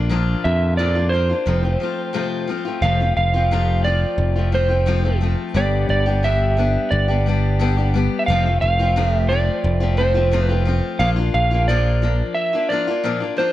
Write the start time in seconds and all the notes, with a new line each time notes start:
Already playing: A#1 D4
0.10 A#2 F3 A#3 D4 F4
0.44 F2 E5
0.77 A#2 F3 A#3 D4 F4 D5
0.95 A#3 D4 F4
1.09 F3 A#3 C5
1.15 D4 F4
1.29 A#3 D4 F4
1.46 F1 F2 C3 F3 A3 C4 F4
1.62 F3 A3 C4 F4
1.80 F3 A3 C4 F4
2.13 F2 C3 F3 A3 C4 F4
2.48 F3 A3 C4 F4
2.65 F3 A3 C4 F4
2.82 F1 F2 C3 F3 A3 C4 F4 F5
3.00 F3 A3 C4 F4
3.17 F1 F5
3.34 F3 A3 C4 F4
3.51 F2 C3 F3 A3 C4 F4
3.84 F3 A3 C4 F4 D5
4.18 F1
4.36 F3 A3 C4 F4
4.52 F3 A3 C4 F4 C5
4.69 F3 A3 C4 F4
4.86 F2 C3 F3 A3 C4 F4
5.04 F3 A3 C4 F4
5.21 F3 A3 C4 F4
5.54 G1 G2 D3 G3 B3 D4 G4 D5
5.89 G1 D5
6.06 G3 B3 D4 G4
6.23 G2 D3 G3 B3 D4 G4 E5
6.57 G3 B3 D4 G4
6.91 G1 D5
7.08 G3 B3 D4 G4
7.26 G3 B3 D4 G4
7.59 G2 D3 G3 B3 D4 G4
7.77 G3 B3 D4 G4
7.94 G3 B3 D4 G4
8.19 E5
8.26 F1 F2 C3 F3 A3 F5
8.31 C4 F4
8.46 F3 A3 C4 F4
8.61 F1 F5
8.79 F3 A3 C4 F4
8.96 F2 C3 F3 A3 C4 F4
9.11 E5
9.29 F3 A3 C4 F4 D5
9.64 F1
9.80 F3 A3 C4 F4
9.97 F3 A3 C4 F4 C5
10.14 F3 A3 C4 F4
10.32 F2 C3 F3 A3 C4 F4
10.43 B4
10.49 F3 A3 C4 F4
10.65 F3 A3 C4 F4
10.99 A#1 A#2 F3 A#3 D4 F4 F5
11.16 A#3 D4 F4
11.34 A#1 F5
11.51 A#3 D4 F4
11.68 A#2 F3 A#3 D4 F4 D5
12.02 F3 A#3 D4 F4
12.35 E5
12.53 A#3 D4 F4
12.69 F3 A#3 D4 D5
12.73 F4
12.87 A#3 D4 F4
13.04 A#2 F3 A#3 D4 F4
13.20 A#3 D4 F4
13.37 F3 A#3 D4 F4 C5